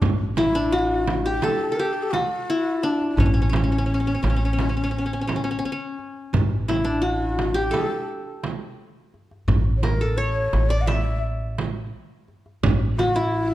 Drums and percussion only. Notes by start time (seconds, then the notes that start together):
0.02 darbuka dum, frame drum
0.37 darbuka tek, frame drum
0.55 darbuka ka
0.73 darbuka ka
1.07 darbuka tek, frame drum
1.42 darbuka tek, frame drum
2.13 darbuka tek, frame drum
2.83 darbuka ka
3.01 darbuka ka
3.18 darbuka dum, frame drum
3.53 darbuka tek, frame drum
3.71 darbuka ka
3.88 darbuka ka
4.24 darbuka tek, frame drum
4.59 darbuka tek, frame drum
5.29 darbuka tek, frame drum
5.99 darbuka ka
6.34 darbuka dum, frame drum
6.69 darbuka tek, frame drum
6.86 darbuka ka
7.39 darbuka tek, frame drum
7.73 darbuka tek, frame drum
8.44 darbuka tek, frame drum
9.14 darbuka ka
9.31 darbuka ka
9.48 darbuka dum, frame drum
9.83 darbuka tek, frame drum
10.01 darbuka ka
10.53 darbuka tek, frame drum
10.88 darbuka tek, frame drum
11.58 darbuka tek, frame drum
12.28 darbuka ka
12.46 darbuka ka
12.63 darbuka dum, frame drum
12.98 darbuka tek, frame drum
13.34 darbuka ka